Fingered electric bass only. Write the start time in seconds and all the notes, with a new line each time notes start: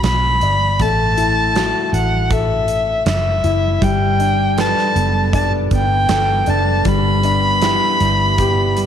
0.03 B1
0.42 G1
0.80 A1
1.93 A1
3.06 F#1
3.44 F#1
3.82 G1
4.95 F#1
5.71 G1
6.09 G1
6.47 F#1
6.85 G1
8.01 G1